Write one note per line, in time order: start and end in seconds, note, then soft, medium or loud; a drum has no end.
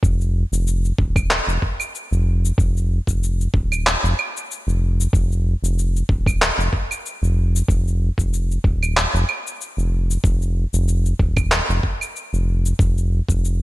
0.03 0.44 F1 loud
0.03 kick loud
0.03 shaker medium
0.21 shaker soft
0.52 0.92 F1 loud
0.52 shaker medium
0.67 shaker medium
0.85 shaker soft
0.98 1.40 D#1 medium
0.98 kick loud
1.16 kick loud
1.16 claves medium
1.16 shaker medium
1.31 clap medium
1.31 shaker medium
1.47 1.58 F1 loud
1.47 shaker soft
1.62 kick medium
1.80 claves medium
1.80 shaker medium
1.95 shaker medium
2.11 2.51 F1 loud
2.11 shaker soft
2.45 shaker medium
2.58 3.00 F1 loud
2.58 kick loud
2.58 shaker medium
2.77 shaker soft
3.07 3.47 F1 medium
3.07 kick medium
3.07 shaker medium
3.23 shaker medium
3.41 shaker soft
3.54 3.95 D#1 medium
3.54 kick loud
3.72 claves medium
3.72 shaker medium
3.87 clap medium
3.87 shaker medium
4.03 4.14 F1 loud
4.03 shaker soft
4.19 claves medium
4.37 shaker medium
4.51 shaker medium
4.67 5.07 F1 medium
4.67 shaker soft
5.00 shaker medium
5.13 5.55 F1 loud
5.13 kick loud
5.13 shaker medium
5.32 shaker soft
5.62 6.02 F1 loud
5.62 shaker medium
5.79 shaker medium
5.96 shaker soft
6.09 6.51 D#1 medium
6.09 kick loud
6.26 kick loud
6.26 claves medium
6.26 shaker medium
6.42 clap medium
6.42 shaker medium
6.58 6.69 F1 loud
6.58 shaker soft
6.73 kick medium
6.91 claves medium
6.91 shaker medium
7.06 shaker medium
7.22 7.62 F1 medium
7.22 shaker soft
7.56 shaker medium
7.68 8.10 F1 loud
7.68 kick loud
7.68 shaker medium
7.88 shaker soft
8.18 8.58 F1 medium
8.18 kick medium
8.18 shaker medium
8.34 shaker medium
8.51 shaker soft
8.64 9.06 D#1 medium
8.64 kick loud
8.83 claves medium
8.83 shaker medium
8.97 clap medium
8.97 shaker medium
9.14 9.24 F1 loud
9.14 shaker soft
9.29 claves medium
9.47 shaker medium
9.61 shaker medium
9.77 10.17 F1 medium
9.77 shaker soft
10.11 shaker medium
10.24 10.65 F1 loud
10.24 kick loud
10.24 shaker medium
10.42 shaker soft
10.73 11.13 F1 medium
10.73 shaker medium
10.88 shaker medium
11.06 shaker soft
11.19 11.61 D#1 medium
11.19 kick loud
11.37 kick loud
11.37 claves medium
11.37 shaker medium
11.52 clap medium
11.52 shaker medium
11.69 11.80 F1 loud
11.69 shaker soft
11.83 kick medium
12.01 claves medium
12.01 shaker medium
12.16 shaker medium
12.33 12.73 F1 medium
12.33 shaker soft
12.66 shaker medium
12.79 13.21 F1 loud
12.79 kick loud
12.79 shaker medium
12.98 shaker soft
13.29 13.62 F1 loud
13.29 kick medium
13.29 shaker medium
13.45 shaker medium